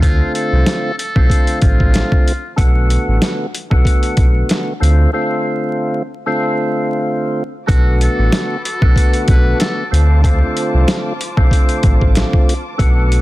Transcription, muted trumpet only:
0.02 F4
0.35 A4
0.98 A4
1.62 F4
7.68 F#4
8.02 A4
8.64 A4
9.30 B4
9.60 A4

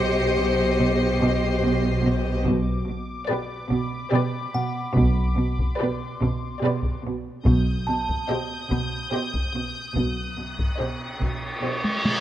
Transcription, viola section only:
Already playing: G4
3.30 G4
4.13 G4
5.80 G4
6.64 G4
8.30 G4
9.13 G4
10.80 G4
11.64 G4

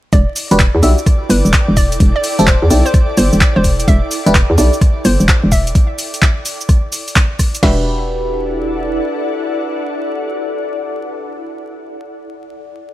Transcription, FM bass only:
0.13 E1
0.51 E1
0.75 E2
0.83 B1
1.30 G1
1.45 E1
1.68 E1
2.00 E1
2.39 E1
2.62 E2
2.71 B1
3.17 G1
3.33 E1
3.56 E1
3.88 E1
4.26 E1
4.50 E2
4.58 B1
5.05 G1
5.20 E1
5.44 E1
7.63 E1

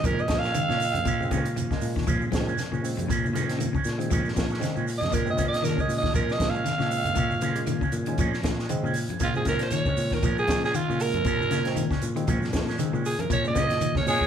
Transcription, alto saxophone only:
0.06 A#4
0.21 D#5
0.39 F5
4.98 D#5
5.14 A#4
5.30 D#5
5.48 D#5
5.64 A#4
5.81 D#5
5.98 D#5
6.15 A#4
6.33 D#5
6.50 F5
9.23 F4
9.36 G#4
9.48 A#4
9.63 C#5
10.14 A#4
10.39 G#4
10.65 G#4
10.75 F4
11.02 A#4
13.06 G#4
13.20 A#4
13.33 C#5
13.48 D#5
13.97 C#5
14.08 C#5

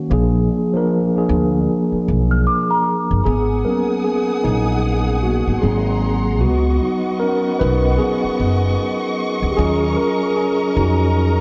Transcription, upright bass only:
0.11 A#1
1.29 D2
1.92 muted upright bass stroke
2.08 B1
3.11 G1
3.26 G#1
4.45 A#1
5.47 G#1
5.63 G#1
6.42 C#2
7.61 B1
8.24 muted upright bass stroke
8.40 F#1
9.42 D2
9.58 D#2
10.77 F2

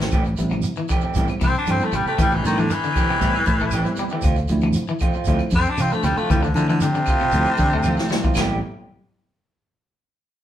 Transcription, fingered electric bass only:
Already playing: A1
0.13 A1
0.38 A1
1.04 muted fingered electric bass stroke
1.16 A1
1.42 C2
1.68 G2
1.92 A1
2.06 muted fingered electric bass stroke
2.18 A1
2.44 A2
3.21 A1
3.47 A2
3.61 A1
4.24 D2
4.50 D2
5.14 muted fingered electric bass stroke
5.27 D2
5.52 F2
5.78 C3
6.03 D2
6.17 muted fingered electric bass stroke
6.30 D2
6.55 D3
7.33 D2
7.59 D3
7.72 D2
8.36 A1

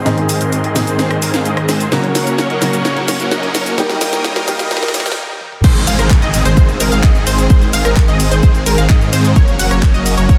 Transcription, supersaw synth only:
0.06 D#3 G#3 C4 G#4 C5
0.29 D#3 G#3 C4 G#4 F5
0.41 D#3 G#3 C4 G#4 A#4
0.64 D#3 G#3 C4 G#4 D#5
0.87 D#3 G#3 C4 G#4 C5
0.99 D#3 G#3 C4 G#4 C5
1.22 D#3 G#3 C4 G#4 A#4
1.34 D#3 G#3 C4 G#4 F5
1.45 D#3 G#3 C4 G#4 D#5
1.69 D#3 G#3 C4 G#4 C5
1.92 F#3 A#3 C#4 A#4 C#5
2.15 F#3 A#3 C#4 A#4 F#5
2.27 F#3 A#3 C#4 A#4 C#5
2.50 F#3 A#3 C#4 A#4 D#5
2.73 F#3 A#3 C#4 A#4 C#5
2.85 F#3 A#3 C#4 A#4 C#5
3.08 F#3 A#3 C#4 A#4 C#5
3.20 F#3 A#3 C#4 A#4 F#5
3.31 F#3 A#3 C#4 A#4 D#5
3.55 F#3 A#3 C#4 A#4 C#5
3.78 G3 A#3 D#4 A#4 D#5
4.01 G3 A#3 D#4 A#4 G5
4.13 G3 A#3 D#4 A#4 C#5
4.36 G3 A#3 D#4 A#4 F5
4.59 G3 A#3 D#4 A#4 D#5
4.71 G3 A#3 D#4 A#4 D#5
4.94 G3 A#3 D#4 A#4 C#5
5.06 G3 A#3 D#4 A#4 G5
5.64 D#3 G#3 C4 G#4 C5
5.87 D#3 G#3 C4 G#4 F5
5.99 D#3 G#3 C4 G#4 A#4
6.22 D#3 G#3 C4 G#4 D#5
6.45 D#3 G#3 C4 G#4 C5
6.57 D#3 G#3 C4 G#4 C5
6.80 D#3 G#3 C4 G#4 A#4
6.92 D#3 G#3 C4 G#4 F5
7.04 D#3 G#3 C4 G#4
7.27 D#3 G#3 C4 G#4 C5
7.50 D#3 G#3 C4 G#4 C5
7.73 D#3 G#3 C4 G#4 F5
7.85 D#3 G#3 C4 G#4 A#4
8.08 D#3 G#3 C4 G#4 D#5
8.31 D#3 G#3 C4 G#4 C5
8.43 D#3 G#3 C4 G#4
8.66 D#3 G#3 C4 G#4 A#4
8.78 D#3 G#3 C4 G#4 F5
8.90 D#3 G#3 C4 G#4 D#5
9.13 D#3 G#3 C4 G#4 C5
9.36 F#3 A#3 C#4 A#4 C#5
9.60 F#3 A#3 C#4 A#4 F#5
9.71 F#3 A#3 C#4 A#4 C#5
9.94 F#3 A#3 C#4 A#4 D#5
10.18 F#3 A#3 C#4 A#4 C#5
10.29 F#3 A#3 C#4 A#4 C#5

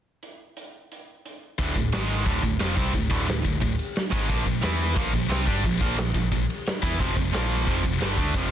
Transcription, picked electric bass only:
1.59 D1
1.75 D1
1.95 G#1
2.26 D1
2.43 D1
2.60 F1
2.77 C2
2.94 D1
3.11 D1
3.28 D1
3.45 D1
3.63 D1
4.12 G#1
4.30 A#1
4.46 A#1
4.63 E2
4.96 A#1
5.14 A#1
5.29 C2
5.47 G2
5.64 A#1
5.81 A#1
5.96 A#1
6.14 A#1
6.31 A#1
6.83 E2
7.00 F1
7.16 F1
7.34 A#1
7.67 F1
7.84 F1
8.02 G1
8.18 D2
8.34 F1

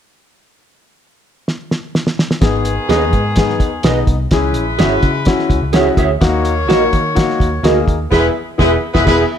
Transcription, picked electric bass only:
2.42 G#1
2.89 D#2
3.13 G#2
3.60 D#2
3.84 B1
4.08 C2
4.31 C#2
4.56 A#1
4.80 G#1
5.03 C#3
5.50 C#2
5.62 C#2
5.97 D2
6.22 D#2
6.69 A#1
6.93 D#3
7.40 D#2
7.63 D2
7.88 D#2
8.12 E1
8.59 E1
8.95 E1
9.07 E1

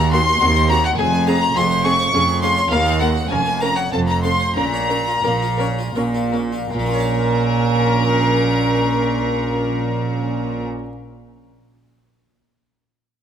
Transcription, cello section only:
Already playing: D#2
0.41 D#2
0.98 F2
1.55 F2
2.13 F2
2.71 D#2
3.31 F2
3.92 F2
4.56 A#2
5.24 A#2
5.95 A#2
6.72 A#2

